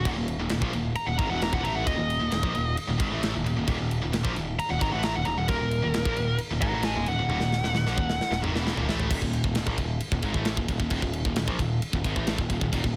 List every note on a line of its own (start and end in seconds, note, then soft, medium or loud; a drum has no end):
0.05 0.16 D#1 medium
0.05 0.16 D#2 loud
0.05 0.16 A#2 loud
0.05 kick loud
0.05 crash medium
0.16 0.38 D#1 medium
0.16 0.35 D#2 medium
0.16 0.35 A#2 medium
0.28 crash medium
0.40 0.50 D#1 medium
0.40 0.49 D#2 medium
0.40 0.49 A#2 medium
0.49 0.61 D#1 medium
0.49 0.62 D#2 medium
0.49 0.61 A#2 medium
0.49 snare loud
0.49 crash medium
0.62 0.72 A#1 loud
0.62 0.73 A#2 medium
0.62 0.73 F3 medium
0.62 kick loud
0.73 0.94 D#1 medium
0.73 0.92 D#2 medium
0.73 0.92 A#2 medium
0.73 crash medium
0.95 1.07 A#5 loud
0.95 crash medium
1.06 1.18 D#1 medium
1.06 1.19 D#2 medium
1.06 1.18 A#2 medium
1.06 1.18 F#5 loud
1.18 1.29 G#1 medium
1.18 1.29 G#2 loud
1.18 1.30 D#3 medium
1.18 1.29 A#5 medium
1.18 kick loud
1.18 crash medium
1.30 1.51 E1 loud
1.30 1.52 E2 loud
1.30 1.52 B2 loud
1.30 1.53 E3 loud
1.30 1.41 F#5 loud
1.42 1.53 A#5 loud
1.42 snare loud
1.42 crash medium
1.53 1.64 D#1 loud
1.53 1.63 D#2 medium
1.53 1.63 A#2 medium
1.53 1.64 F#5 loud
1.53 kick loud
1.64 1.85 A1 loud
1.64 1.86 A2 loud
1.64 1.86 E3 medium
1.64 1.87 A3 medium
1.64 1.75 A#5 loud
1.64 crash medium
1.75 1.87 F#5 medium
1.87 1.97 D#1 loud
1.87 1.98 D#2 medium
1.87 1.98 A#2 loud
1.87 2.75 D#5 loud
1.87 kick loud
1.87 crash medium
1.99 2.20 D#1 medium
1.99 2.17 D#2 medium
1.99 2.17 A#2 medium
2.10 crash medium
2.21 2.31 D#1 medium
2.21 2.31 D#2 medium
2.21 2.31 A#2 medium
2.32 2.43 D#1 medium
2.32 2.43 D#2 medium
2.32 2.42 A#2 medium
2.32 snare loud
2.32 crash medium
2.43 2.54 A#1 medium
2.43 2.54 A#2 medium
2.43 2.54 F3 loud
2.43 kick loud
2.55 2.76 D#1 medium
2.55 2.73 D#2 medium
2.55 2.73 A#2 medium
2.55 crash medium
2.77 crash medium
2.89 2.99 D#1 medium
2.89 3.00 D#2 medium
2.89 3.00 A#2 medium
3.00 3.11 G#1 medium
3.00 3.11 G#2 medium
3.00 3.11 D#3 loud
3.00 kick loud
3.00 crash medium
3.12 3.33 A1 medium
3.12 3.34 A2 medium
3.12 3.34 E3 loud
3.12 3.35 A3 loud
3.23 snare loud
3.23 crash medium
3.35 3.45 D#1 medium
3.35 3.45 D#2 medium
3.35 3.46 A#2 medium
3.46 3.56 D#1 medium
3.46 3.57 D#2 medium
3.46 3.57 A#2 medium
3.46 crash medium
3.57 3.67 D#1 medium
3.57 3.67 D#2 medium
3.57 3.68 A#2 medium
3.68 3.78 D#1 medium
3.68 3.79 D#2 loud
3.68 3.79 A#2 loud
3.68 kick loud
3.68 crash medium
3.80 4.01 D#1 medium
3.80 3.98 D#2 medium
3.80 3.98 A#2 medium
3.91 crash medium
4.02 4.13 D#1 medium
4.02 4.11 D#2 medium
4.02 4.12 A#2 medium
4.13 4.24 D#1 medium
4.13 4.24 D#2 medium
4.13 4.23 A#2 medium
4.13 snare loud
4.13 crash medium
4.24 4.35 A#1 loud
4.24 4.34 A#2 medium
4.24 4.35 F3 medium
4.24 kick loud
4.35 4.57 D#1 medium
4.35 4.54 D#2 medium
4.35 4.54 A#2 medium
4.35 crash medium
4.59 4.70 A#5 loud
4.59 crash medium
4.70 4.81 D#1 medium
4.70 4.81 D#2 medium
4.70 4.82 A#2 medium
4.70 4.81 F#5 loud
4.81 4.92 G#1 medium
4.81 4.92 G#2 medium
4.81 4.93 D#3 medium
4.81 4.92 A#5 medium
4.81 kick loud
4.81 crash medium
4.92 5.14 A1 loud
4.92 5.14 A2 loud
4.92 5.15 E3 medium
4.92 5.15 A3 loud
4.92 5.03 F#5 loud
5.03 5.15 A#5 loud
5.03 snare loud
5.03 crash medium
5.15 5.25 D#1 medium
5.15 5.26 D#2 medium
5.15 5.27 A#2 medium
5.15 5.26 F#5 loud
5.25 5.36 D#1 medium
5.25 5.36 D#2 medium
5.25 5.36 A#2 medium
5.25 5.37 A#5 loud
5.25 crash medium
5.37 5.48 D#1 medium
5.37 5.47 D#2 medium
5.37 5.48 A#2 medium
5.37 5.49 F#5 loud
5.48 5.60 D#1 medium
5.48 5.59 D#2 loud
5.48 5.60 A#2 loud
5.48 6.36 A#4 loud
5.48 kick loud
5.48 crash medium
5.60 5.82 D#1 medium
5.60 5.78 D#2 medium
5.60 5.79 A#2 medium
5.71 crash medium
5.83 5.94 D#1 medium
5.83 5.93 D#2 medium
5.83 5.93 A#2 medium
5.94 6.05 D#1 medium
5.94 6.05 D#2 medium
5.94 6.04 A#2 medium
5.94 snare loud
5.94 crash medium
6.05 6.16 A#1 loud
6.05 6.16 A#2 medium
6.05 6.17 F3 loud
6.05 kick loud
6.16 6.38 D#1 medium
6.16 6.35 D#2 medium
6.16 6.35 A#2 medium
6.16 crash medium
6.38 crash medium
6.51 6.61 D#1 medium
6.51 6.62 D#2 medium
6.51 6.62 A#2 medium
6.61 6.72 G#1 medium
6.61 6.73 G#2 medium
6.61 6.73 D#3 loud
6.61 6.84 F#5 loud
6.61 6.84 A#5 loud
6.61 kick loud
6.61 crash medium
6.73 6.94 A1 loud
6.73 6.95 A2 loud
6.73 6.96 E3 medium
6.73 6.96 A3 loud
6.83 7.06 D#5 medium
6.83 7.07 G#5 loud
6.83 snare loud
6.83 crash medium
6.96 7.06 D#1 medium
6.96 7.06 D#2 medium
6.96 7.07 A#2 medium
7.06 7.17 D#1 medium
7.06 7.18 D#2 medium
7.06 7.18 A#2 medium
7.06 8.39 F#5 loud
7.06 crash medium
7.18 7.28 D#1 medium
7.18 7.27 D#2 medium
7.18 7.28 A#2 medium
7.29 7.40 D#1 medium
7.29 7.39 D#2 loud
7.29 7.40 A#2 loud
7.29 high tom medium
7.40 7.62 D#1 medium
7.40 7.59 D#2 medium
7.40 7.59 A#2 medium
7.40 snare medium
7.52 snare medium
7.63 7.74 D#1 medium
7.63 7.74 D#2 medium
7.63 7.74 A#2 medium
7.63 snare medium
7.74 7.85 D#1 medium
7.74 7.86 D#2 medium
7.74 7.85 A#2 medium
7.74 snare medium
7.86 7.97 A#1 medium
7.86 7.97 A#2 medium
7.86 7.98 F3 loud
7.86 snare medium
7.98 8.19 D#1 medium
7.98 8.16 D#2 medium
7.98 8.16 A#2 medium
7.98 kick medium
8.10 snare medium
8.21 snare medium
8.31 8.42 D#1 medium
8.31 8.42 D#2 medium
8.31 8.43 A#2 medium
8.31 snare medium
8.43 8.53 G#1 medium
8.43 8.53 G#2 loud
8.43 8.54 D#3 loud
8.43 mid tom loud
8.54 8.75 E1 loud
8.54 8.76 E2 loud
8.54 8.77 B2 loud
8.54 8.77 E3 loud
8.54 snare medium
8.67 snare medium
8.76 8.87 D#1 loud
8.76 8.87 D#2 medium
8.76 8.88 A#2 loud
8.76 floor tom medium
8.87 9.08 A1 loud
8.87 9.10 A2 medium
8.87 9.10 E3 loud
8.87 9.10 A3 loud
8.87 snare loud
9.00 floor tom medium
9.10 9.21 D#1 medium
9.10 9.21 D#2 loud
9.10 9.21 A#2 loud
9.10 kick loud
9.10 crash loud
9.10 crash medium
9.22 9.43 D#1 medium
9.22 9.40 D#2 medium
9.22 9.40 A#2 medium
9.22 kick medium
9.33 crash medium
9.44 9.55 D#1 medium
9.44 9.54 D#2 medium
9.44 9.54 A#2 medium
9.44 kick loud
9.55 9.66 D#1 medium
9.55 9.67 D#2 medium
9.55 9.65 A#2 medium
9.55 snare loud
9.55 crash medium
9.67 9.77 A#1 loud
9.67 9.77 A#2 medium
9.67 9.78 F3 medium
9.67 kick loud
9.78 9.99 D#1 medium
9.78 9.96 D#2 medium
9.78 9.96 A#2 medium
9.78 kick medium
9.78 crash medium
10.00 crash medium
10.12 10.22 D#1 medium
10.12 10.24 D#2 medium
10.12 10.23 A#2 medium
10.12 kick loud
10.22 10.33 G#1 medium
10.22 10.33 G#2 medium
10.22 10.34 D#3 loud
10.22 kick loud
10.22 crash medium
10.34 10.55 A1 medium
10.34 10.56 A2 loud
10.34 10.56 E3 medium
10.34 10.57 A3 loud
10.34 kick medium
10.45 snare loud
10.45 crash medium
10.57 10.68 D#1 medium
10.57 10.69 D#2 medium
10.57 10.69 A#2 medium
10.57 kick loud
10.68 10.79 D#1 medium
10.68 10.79 D#2 medium
10.68 10.79 A#2 medium
10.68 kick medium
10.68 crash medium
10.80 10.90 D#1 medium
10.80 10.90 D#2 medium
10.80 10.91 A#2 medium
10.80 kick medium
10.90 11.01 D#1 medium
10.90 11.02 D#2 loud
10.90 11.02 A#2 loud
10.90 kick loud
10.90 crash medium
11.02 11.23 D#1 medium
11.02 11.20 D#2 medium
11.02 11.21 A#2 medium
11.02 kick medium
11.13 crash medium
11.25 11.35 D#1 medium
11.25 11.36 D#2 medium
11.25 11.36 A#2 medium
11.25 kick medium
11.36 11.47 D#1 medium
11.36 11.48 D#2 medium
11.36 11.47 A#2 medium
11.36 snare loud
11.36 crash medium
11.48 11.58 A#1 loud
11.48 11.58 A#2 medium
11.48 11.59 F3 medium
11.48 kick loud
11.59 11.80 D#1 medium
11.59 11.77 D#2 medium
11.59 11.78 A#2 medium
11.59 kick medium
11.59 crash medium
11.82 crash medium
11.93 12.04 D#1 medium
11.93 12.05 D#2 medium
11.93 12.05 A#2 medium
11.93 kick loud
12.04 12.15 G#1 loud
12.04 12.15 G#2 medium
12.04 12.16 D#3 loud
12.04 kick medium
12.04 crash medium
12.16 12.37 A1 loud
12.16 12.38 A2 loud
12.16 12.38 E3 medium
12.16 12.38 A3 loud
12.16 kick medium
12.27 snare loud
12.27 crash medium
12.38 12.49 D#1 medium
12.38 12.50 D#2 medium
12.38 12.51 A#2 medium
12.38 kick loud
12.50 12.60 D#1 medium
12.50 12.62 D#2 medium
12.50 12.62 A#2 medium
12.50 kick medium
12.50 crash medium
12.60 12.71 D#1 medium
12.60 12.72 D#2 medium
12.60 12.71 A#2 medium
12.60 kick medium
12.64 12.73 A#2 medium
12.73 12.83 D#1 medium
12.73 12.83 D#2 loud
12.73 12.83 A#2 loud
12.73 kick loud
12.73 crash medium
12.84 12.96 D#2 medium
12.84 12.96 A#2 medium
12.84 kick medium